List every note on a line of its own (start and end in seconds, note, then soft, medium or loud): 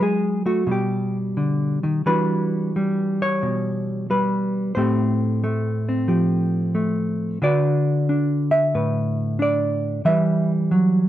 0.00 0.66 F#3 medium
0.00 0.45 G#3 medium
0.00 0.66 E4 soft
0.00 0.46 G#4 medium
0.46 0.68 A3 medium
0.46 0.68 F#4 medium
0.67 2.02 B2 medium
0.67 2.06 G3 soft
0.72 1.16 G4 medium
1.37 1.83 D3 medium
1.83 2.06 D#3 medium
2.06 4.74 E3 medium
2.06 2.76 G3 soft
2.06 4.75 D4 soft
2.06 4.75 F#4 soft
2.06 3.21 B4 medium
2.76 4.09 G3 medium
3.22 4.10 C#5 medium
3.43 4.74 B2 medium
4.10 4.76 G3 medium
4.10 4.74 B4 medium
4.75 7.42 A2 medium
4.75 5.43 A3 soft
4.75 5.87 C4 soft
4.75 6.08 G4 soft
4.75 5.21 C5 medium
5.44 6.74 A3 medium
5.89 7.42 C4 soft
6.08 7.39 F3 medium
6.08 7.39 G4 soft
6.75 7.39 A3 medium
7.42 10.06 D3 medium
7.42 8.08 D4 soft
7.42 10.04 F#4 soft
7.42 8.74 B4 soft
7.42 8.51 D5 medium
8.09 9.38 D4 medium
8.51 9.39 E5 loud
8.75 10.05 A2 medium
8.75 10.04 B4 medium
9.39 10.03 D4 medium
9.39 10.05 D5 medium
10.05 11.09 E3 medium
10.05 11.09 G3 medium
10.05 11.09 B4 soft
10.05 10.51 E5 medium
10.71 11.09 F#3 medium